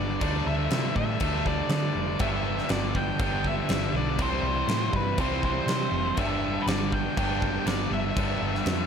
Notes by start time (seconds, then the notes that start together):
Already playing: G1 G2 D3 G3 B3 D4 G4 D5
0.20 D2 D3 G3 A3 D4 A4 D5, kick, crash
0.46 D2 E5
0.71 C3, snare, crash
0.95 A2 E5, kick
1.20 D2 D3 G3 A3 D4 A4, kick, crash
1.46 D5, kick
1.69 D3, snare, crash
1.95 F1
2.19 G1 G2 D3 G3 B3 D4 G4 E5, kick, crash
2.58 snare
2.69 G1 D5, snare, crash
2.95 G5, kick
3.19 G1 G2 D3 G3 B3 D4 G4 G5, kick, crash
3.44 E5, kick
3.69 G1, snare, crash
3.93 B1 D5
4.18 C2 C3 E3 G3 C4 E4 G4 C5, kick, crash
4.42 C2
4.67 A2, snare, crash
4.93 G2 B4, kick
5.18 C2 C3 E3 G3 C4 E4 G4 C5, kick, crash
5.43 C5, kick
5.66 C3, snare, crash
5.91 F1
6.17 G1 G2 D3 G3 B3 D4 G4 E5, kick, crash
6.62 B4
6.66 G1 D5, snare, crash
6.92 G5, kick
7.17 G1 G2 D3 G3 B3 D4 G4 G5, kick, crash
7.42 kick
7.66 G1 D5, snare, crash
7.91 G1 E5
8.16 G1 G2 D3 G3 B3 D4 G4, kick, crash
8.41 G1
8.55 snare
8.66 F2, snare, crash